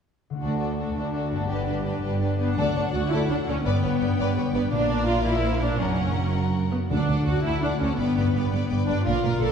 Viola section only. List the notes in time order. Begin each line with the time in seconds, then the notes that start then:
0.41 D4
0.60 D4
0.77 D4
0.96 D4
1.14 D4
1.31 D4
1.48 D4
1.67 D4
1.85 D4
2.04 D4
2.21 D4
2.39 B3 D4
2.58 D4
2.94 F#4
3.11 E4
3.30 D4
3.48 C#4
3.65 B3
4.53 B3
4.72 D4
5.07 F4
5.25 E4
5.62 D4
5.79 C#4
6.72 B3
6.89 D4
7.26 F#4
7.44 E4
7.62 D4
7.80 C#4
7.98 B3
8.87 D4
9.05 F4
9.41 A4